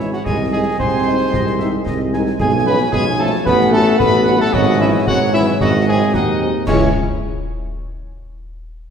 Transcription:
Already playing: G#1 E3 G#3 C#5
0.00 snare
0.12 F#3 F#4 F#5, snare
0.25 C2 D#3 G#3 G#4 D#5 G#5, concert bass drum, snare, crash
0.52 D#3 G#3 D#4 G#4 G#5
0.79 C2 C4 C5 G#5 C6, concert bass drum, snare
1.06 D#3 G#3 D#4
1.33 C2 D#5, concert bass drum, snare
1.47 snare
1.59 D#3 G#3 D#4 E5, snare
1.85 C2 D#5, concert bass drum, snare
2.13 D#3 G#3 D#4 G#5, snare
2.26 snare
2.39 B1 F3 G#3 C#4 G#4 G#5, concert bass drum, snare, crash
2.66 F3 G#3 B3 C#4 B4 B5
2.92 B1 G#3 G#4 G#5, concert bass drum, snare
3.19 F3 G#3 A3 C#4 A4 A5
3.45 A1 F#3 B3 B4 F#5 B5, concert bass drum, snare
3.60 snare
3.73 F#3 A3 C#4 A4 A5, snare
3.98 A1 B3 B4 B5, concert bass drum, snare
4.26 F#3 C#4, snare
4.39 A3 A4 A5, snare
4.52 G#1 F#3 G#3 C#4 F#4 D#5 F#5, concert bass drum, snare, crash
4.79 E3 G#3 C#4 E4 E5
5.06 G#1 F#3 F#4 C#5 F#5, concert bass drum, snare
5.33 E3 G#3 C#4 E4 E5
5.60 G#1 F#3 C4 F#4 D#5 F#5, concert bass drum, snare
5.87 F#3 G#3 C4 G#4 G#5
6.14 D#2 D#3 D#4 D#5 F#5, concert bass drum, snare
6.41 F#3 G#3 C4
6.67 C#2 E3 G#3 C#4 E4 C#5 C#6, concert bass drum, snare, crash

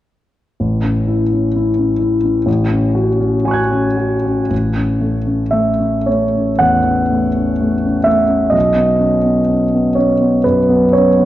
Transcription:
0.60 A1
0.83 C#4
1.08 E4
1.33 C#4
1.56 E4
1.79 C#4
1.99 E4
2.23 C#4
2.46 A1
2.69 C#4
2.95 F#4
3.21 C#4
3.45 F#4 G#5 C#6
3.51 F#6 G#6
3.71 C#4
3.97 F#4
4.25 C#4
4.50 A1
4.76 C#4
5.00 A3
5.27 C#4
5.51 A3 E5
5.79 C#4
6.06 A3 C#5
6.35 C#4
6.59 E2 F#5
6.86 C#4
7.11 A3
7.37 C#4
7.61 A3
7.85 C#4
8.04 A3 E5
8.28 C#4
8.50 B1 D#5
8.75 B3
8.99 C#4
9.23 B3
9.49 C#4
9.74 B3
9.95 C#4 C#5
10.21 B3
10.44 F#2 B4
10.69 B3
10.93 C#4 C#5
11.16 B3

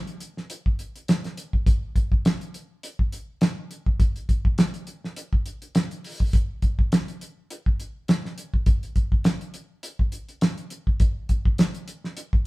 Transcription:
0.07 closed hi-hat
0.20 closed hi-hat
0.37 snare
0.50 closed hi-hat
0.66 kick
0.79 closed hi-hat
0.96 closed hi-hat
1.08 snare, closed hi-hat
1.24 snare, closed hi-hat
1.37 closed hi-hat
1.53 kick
1.66 kick, closed hi-hat
1.96 kick, closed hi-hat
2.12 kick
2.25 snare, closed hi-hat
2.41 closed hi-hat
2.54 closed hi-hat
2.83 closed hi-hat
2.99 kick
3.12 closed hi-hat
3.41 snare, closed hi-hat
3.71 closed hi-hat
3.86 kick
4.00 kick, closed hi-hat
4.16 closed hi-hat
4.29 kick, closed hi-hat
4.45 kick
4.58 snare, closed hi-hat
4.74 closed hi-hat
4.87 closed hi-hat
5.04 snare
5.16 closed hi-hat
5.33 kick
5.46 closed hi-hat
5.62 closed hi-hat
5.75 snare, closed hi-hat
5.91 closed hi-hat
6.04 open hi-hat
6.20 kick
6.33 kick, closed hi-hat
6.62 kick, closed hi-hat
6.79 kick
6.92 snare, closed hi-hat
7.08 closed hi-hat
7.21 closed hi-hat
7.50 closed hi-hat
7.66 kick
7.80 closed hi-hat
8.08 snare, closed hi-hat
8.25 snare
8.38 closed hi-hat
8.54 kick
8.66 kick, closed hi-hat
8.83 closed hi-hat
8.96 kick, closed hi-hat
9.12 kick
9.24 snare, closed hi-hat
9.41 closed hi-hat
9.54 closed hi-hat
9.83 closed hi-hat
9.99 kick
10.12 closed hi-hat
10.29 closed hi-hat
10.41 snare, closed hi-hat
10.58 closed hi-hat
10.70 closed hi-hat
10.87 kick
11.00 kick, closed hi-hat
11.29 kick, closed hi-hat
11.45 kick
11.58 snare, closed hi-hat
11.74 closed hi-hat
11.88 closed hi-hat
12.04 snare
12.17 closed hi-hat
12.33 kick

